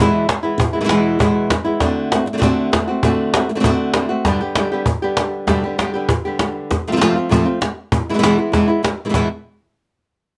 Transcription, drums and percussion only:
0, 0, Header, 1, 2, 480
1, 0, Start_track
1, 0, Tempo, 305499
1, 941, Time_signature, 4, 2, 24, 8
1, 16298, End_track
2, 0, Start_track
2, 0, Title_t, "Cajon"
2, 454, Note_on_c, 9, 38, 108
2, 611, Note_off_c, 9, 38, 0
2, 937, Note_on_c, 9, 36, 117
2, 1094, Note_off_c, 9, 36, 0
2, 1402, Note_on_c, 9, 38, 103
2, 1559, Note_off_c, 9, 38, 0
2, 1888, Note_on_c, 9, 36, 117
2, 2045, Note_off_c, 9, 36, 0
2, 2362, Note_on_c, 9, 36, 82
2, 2362, Note_on_c, 9, 38, 118
2, 2520, Note_off_c, 9, 36, 0
2, 2520, Note_off_c, 9, 38, 0
2, 2835, Note_on_c, 9, 36, 126
2, 2835, Note_on_c, 9, 38, 35
2, 2992, Note_off_c, 9, 36, 0
2, 2992, Note_off_c, 9, 38, 0
2, 3329, Note_on_c, 9, 38, 98
2, 3486, Note_off_c, 9, 38, 0
2, 3797, Note_on_c, 9, 36, 112
2, 3955, Note_off_c, 9, 36, 0
2, 4291, Note_on_c, 9, 36, 78
2, 4291, Note_on_c, 9, 38, 111
2, 4448, Note_off_c, 9, 36, 0
2, 4448, Note_off_c, 9, 38, 0
2, 4760, Note_on_c, 9, 36, 115
2, 4918, Note_off_c, 9, 36, 0
2, 5243, Note_on_c, 9, 38, 114
2, 5400, Note_off_c, 9, 38, 0
2, 5481, Note_on_c, 9, 38, 37
2, 5638, Note_off_c, 9, 38, 0
2, 5721, Note_on_c, 9, 36, 116
2, 5878, Note_off_c, 9, 36, 0
2, 6184, Note_on_c, 9, 38, 123
2, 6341, Note_off_c, 9, 38, 0
2, 6676, Note_on_c, 9, 36, 121
2, 6676, Note_on_c, 9, 38, 35
2, 6833, Note_off_c, 9, 36, 0
2, 6833, Note_off_c, 9, 38, 0
2, 7156, Note_on_c, 9, 38, 107
2, 7313, Note_off_c, 9, 38, 0
2, 7631, Note_on_c, 9, 36, 106
2, 7789, Note_off_c, 9, 36, 0
2, 8120, Note_on_c, 9, 38, 117
2, 8278, Note_off_c, 9, 38, 0
2, 8604, Note_on_c, 9, 36, 120
2, 8604, Note_on_c, 9, 38, 35
2, 8761, Note_off_c, 9, 36, 0
2, 8761, Note_off_c, 9, 38, 0
2, 9095, Note_on_c, 9, 38, 94
2, 9252, Note_off_c, 9, 38, 0
2, 9334, Note_on_c, 9, 38, 31
2, 9491, Note_off_c, 9, 38, 0
2, 9563, Note_on_c, 9, 36, 119
2, 9720, Note_off_c, 9, 36, 0
2, 10045, Note_on_c, 9, 38, 118
2, 10202, Note_off_c, 9, 38, 0
2, 10542, Note_on_c, 9, 36, 117
2, 10542, Note_on_c, 9, 38, 35
2, 10699, Note_off_c, 9, 36, 0
2, 10699, Note_off_c, 9, 38, 0
2, 11022, Note_on_c, 9, 38, 100
2, 11179, Note_off_c, 9, 38, 0
2, 11502, Note_on_c, 9, 36, 121
2, 11659, Note_off_c, 9, 36, 0
2, 11970, Note_on_c, 9, 38, 117
2, 12127, Note_off_c, 9, 38, 0
2, 12444, Note_on_c, 9, 36, 116
2, 12601, Note_off_c, 9, 36, 0
2, 12939, Note_on_c, 9, 38, 106
2, 13096, Note_off_c, 9, 38, 0
2, 13171, Note_on_c, 9, 38, 35
2, 13328, Note_off_c, 9, 38, 0
2, 13410, Note_on_c, 9, 36, 116
2, 13410, Note_on_c, 9, 38, 34
2, 13567, Note_off_c, 9, 36, 0
2, 13567, Note_off_c, 9, 38, 0
2, 13897, Note_on_c, 9, 38, 104
2, 14054, Note_off_c, 9, 38, 0
2, 14361, Note_on_c, 9, 36, 108
2, 14518, Note_off_c, 9, 36, 0
2, 16298, End_track
0, 0, End_of_file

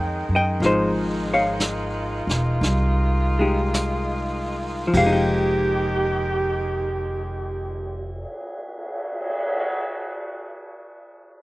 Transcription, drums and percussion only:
0, 0, Header, 1, 3, 480
1, 0, Start_track
1, 0, Key_signature, -4, "minor"
1, 0, Tempo, 964630
1, 305, Time_signature, 4, 2, 24, 8
1, 792, Tempo, 1036269
1, 1272, Tempo, 1109057
1, 1752, Tempo, 1195219
1, 2232, Tempo, 1234568
1, 4754, End_track
2, 0, Start_track
2, 0, Title_t, "Cymbal swell"
2, 2565, Note_on_c, 9, 59, 38
2, 4062, Note_off_c, 9, 59, 0
2, 4754, End_track
3, 0, Start_track
3, 0, Title_t, "Drums"
3, 310, Note_on_c, 9, 25, 34
3, 310, Note_on_c, 9, 38, 26
3, 360, Note_off_c, 9, 38, 0
3, 795, Note_on_c, 9, 38, 36
3, 795, Note_on_c, 9, 44, 51
3, 842, Note_off_c, 9, 38, 0
3, 842, Note_off_c, 9, 44, 0
3, 1117, Note_on_c, 9, 38, 24
3, 1163, Note_off_c, 9, 38, 0
3, 1272, Note_off_c, 9, 25, 0
3, 1272, Note_on_c, 9, 25, 30
3, 1272, Note_on_c, 9, 38, 25
3, 1315, Note_off_c, 9, 38, 0
3, 1753, Note_on_c, 9, 38, 38
3, 1753, Note_on_c, 9, 44, 50
3, 1793, Note_off_c, 9, 38, 0
3, 1793, Note_off_c, 9, 44, 0
3, 2234, Note_on_c, 9, 36, 47
3, 2235, Note_on_c, 9, 51, 53
3, 2273, Note_off_c, 9, 36, 0
3, 2274, Note_off_c, 9, 51, 0
3, 2621, Note_off_c, 9, 25, 0
3, 4754, End_track
0, 0, End_of_file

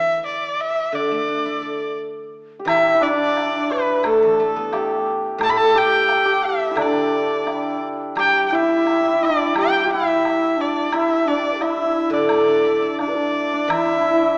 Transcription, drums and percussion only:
0, 0, Header, 1, 2, 480
1, 0, Start_track
1, 0, Tempo, 692042
1, 883, Time_signature, 2, 2, 24, 8
1, 2338, Tempo, 681818
1, 4738, Tempo, 692042
1, 10008, End_track
2, 0, Start_track
2, 0, Title_t, "Drums"
2, 1857, Note_on_c, 9, 76, 60
2, 1926, Note_off_c, 9, 76, 0
2, 2337, Note_on_c, 9, 76, 38
2, 2337, Note_on_c, 9, 77, 38
2, 2407, Note_off_c, 9, 76, 0
2, 2407, Note_off_c, 9, 77, 0
2, 2809, Note_on_c, 9, 76, 55
2, 2880, Note_off_c, 9, 76, 0
2, 3293, Note_on_c, 9, 76, 38
2, 3293, Note_on_c, 9, 77, 41
2, 3363, Note_off_c, 9, 76, 0
2, 3363, Note_off_c, 9, 77, 0
2, 3772, Note_on_c, 9, 76, 63
2, 3842, Note_off_c, 9, 76, 0
2, 4248, Note_on_c, 9, 76, 38
2, 4248, Note_on_c, 9, 77, 39
2, 4318, Note_off_c, 9, 76, 0
2, 4318, Note_off_c, 9, 77, 0
2, 4730, Note_on_c, 9, 76, 56
2, 4800, Note_off_c, 9, 76, 0
2, 5217, Note_on_c, 9, 76, 34
2, 5217, Note_on_c, 9, 77, 36
2, 5286, Note_off_c, 9, 76, 0
2, 5286, Note_off_c, 9, 77, 0
2, 5702, Note_on_c, 9, 76, 52
2, 5771, Note_off_c, 9, 76, 0
2, 6186, Note_on_c, 9, 76, 39
2, 6186, Note_on_c, 9, 77, 36
2, 6256, Note_off_c, 9, 76, 0
2, 6256, Note_off_c, 9, 77, 0
2, 6664, Note_on_c, 9, 76, 62
2, 6734, Note_off_c, 9, 76, 0
2, 7146, Note_on_c, 9, 76, 41
2, 7146, Note_on_c, 9, 77, 40
2, 7216, Note_off_c, 9, 76, 0
2, 7216, Note_off_c, 9, 77, 0
2, 7614, Note_on_c, 9, 76, 58
2, 7683, Note_off_c, 9, 76, 0
2, 8088, Note_on_c, 9, 76, 35
2, 8088, Note_on_c, 9, 77, 37
2, 8157, Note_off_c, 9, 76, 0
2, 8157, Note_off_c, 9, 77, 0
2, 8561, Note_on_c, 9, 76, 55
2, 8631, Note_off_c, 9, 76, 0
2, 9045, Note_on_c, 9, 76, 38
2, 9045, Note_on_c, 9, 77, 38
2, 9114, Note_off_c, 9, 76, 0
2, 9114, Note_off_c, 9, 77, 0
2, 9537, Note_on_c, 9, 76, 64
2, 9606, Note_off_c, 9, 76, 0
2, 10008, End_track
0, 0, End_of_file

